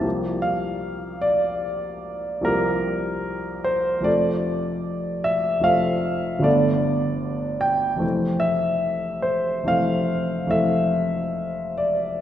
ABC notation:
X:1
M:5/4
L:1/8
Q:1/4=74
K:Cmix
V:1 name="Grand piano"
z f2 d3 B3 c | d3 e f2 d3 g | [K:Flyd] z e2 c f2 e3 d |]
V:2 name="Grand piano"
[C,,F,B,CG]6 [C,,F,B,CG]4 | [F,,,F,A,CA]4 [F,,,F,A,CA]2 [G,,,D,A,=B,A]4 | [K:Flyd] [F,,,E,A,CA]4 [F,,,E,A,CA]2 [F,,,E,A,CA]4 |]